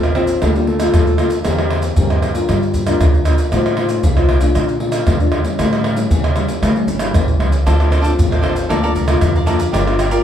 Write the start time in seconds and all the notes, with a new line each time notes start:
Already playing: A1 A2 C4 F4 A4
0.03 A#3, pandeiro, tamborim, maracas
0.15 C4 F4 A4, pandeiro, tamborim
0.27 pandeiro, maracas
0.42 D2 D3 A3 A#3 F4 A4, pandeiro, tamborim, maracas, surdo
0.55 G3 A#3 F4 A4, pandeiro, maracas
0.67 A3, pandeiro
0.80 F4 A4, pandeiro, tamborim, maracas
0.94 D#2 D3, pandeiro, tamborim, maracas, surdo
1.07 pandeiro, maracas
1.18 A#3 F4 A4, pandeiro, tamborim, maracas
1.30 pandeiro, maracas
1.45 E2 E3 C4 G4 A#4, pandeiro, tamborim, maracas, surdo
1.58 C4 G4 A#4, pandeiro, tamborim, maracas
1.70 pandeiro, tamborim
1.82 pandeiro, maracas
1.96 G2 E3 C4 G4 A#4, pandeiro, maracas, surdo
2.10 pandeiro, tamborim, maracas
2.22 pandeiro, tamborim, maracas
2.34 D4 F4 A#4, pandeiro, maracas
2.49 G2 G3, pandeiro, tamborim, maracas, surdo
2.63 pandeiro, maracas
2.74 pandeiro, maracas, surdo
2.86 D4 F4 A#4, pandeiro, tamborim, maracas
3.01 D2 D3, pandeiro, tamborim, maracas, surdo
3.14 pandeiro, maracas
3.25 D4 F4 A#4, pandeiro, tamborim, maracas
3.38 pandeiro, maracas
3.52 A2 A3 D#4 F4 C5, pandeiro, tamborim, maracas, surdo
3.66 pandeiro, tamborim, maracas
3.77 D#4 F4 C5, pandeiro, tamborim
3.89 pandeiro, maracas
4.03 C2 A3, pandeiro, maracas, surdo
4.17 D#4 F4 C5, pandeiro, tamborim, maracas
4.29 pandeiro, tamborim
4.41 A3 D4 F4, pandeiro, maracas
4.55 A#2, pandeiro, tamborim, maracas, surdo
4.68 pandeiro, maracas
4.80 A3 D4 F4, pandeiro
4.92 pandeiro, tamborim, maracas
5.07 E2, pandeiro, tamborim, maracas, surdo
5.20 A3 D4 F4, pandeiro, maracas
5.32 pandeiro, tamborim
5.44 G3 C#4 E4, pandeiro, maracas
5.58 A2, pandeiro, tamborim, maracas, surdo
5.71 G3 C#4 E4, pandeiro, tamborim, maracas
5.84 pandeiro, tamborim
5.95 G3 C#4 E4, pandeiro, maracas
6.10 E2 E3, pandeiro, maracas, surdo
6.24 pandeiro, tamborim, maracas
6.36 G3 C#4 E4, pandeiro, tamborim, maracas
6.48 pandeiro, maracas
6.62 A2 A3, pandeiro, tamborim, maracas, surdo
6.76 G3 C#4 E4, pandeiro, maracas
6.87 G1, pandeiro, maracas
6.99 G3 C#4 E4, pandeiro, tamborim, maracas
7.13 A1 E3, pandeiro, tamborim, maracas, surdo
7.28 pandeiro, maracas
7.39 C#2 G3 C#4 E4, pandeiro, tamborim
7.52 pandeiro, maracas
7.66 D2 D3 C4 D4 F4 A4 C5 F5, pandeiro, tamborim, maracas, surdo
7.80 C4 F4 A4, pandeiro, tamborim, maracas
7.90 D4 A4 C5 F5, pandeiro, tamborim, maracas
8.02 C4 D4 F4 A4 C5 F5, pandeiro, maracas
8.18 A1 A2, pandeiro, maracas, surdo
8.31 A4 C5 F5, pandeiro, tamborim, maracas
8.42 C4 D4 F4 A4 C5 F5, pandeiro, tamborim
8.56 A4 C5 F5, pandeiro, maracas
8.69 D2 D3 A#3 F4 A4 D5 F5 A#5, pandeiro, tamborim, maracas, surdo
8.83 A#3 F4 A4 D5 F5 A#5, pandeiro, maracas
8.95 D5 F5 A#5, pandeiro, maracas, surdo
9.08 A#3 F4 A4, pandeiro, tamborim, maracas
9.21 F2 D3, pandeiro, tamborim, maracas, surdo
9.36 D5 F5 A#5, pandeiro, maracas
9.46 A#3 F4 A4 D5 F5 A#5, pandeiro, tamborim, maracas
9.59 D5 F5 A#5, pandeiro, maracas
9.72 G1 G3 D4 F4 G4 A#4 D5 F5, pandeiro, tamborim, maracas, surdo
9.87 D4 F4, pandeiro, tamborim, maracas
9.99 G4 A#4 D5 F5, pandeiro, tamborim, maracas
10.11 D4 F4 G4 A#4 D5 F5, pandeiro, maracas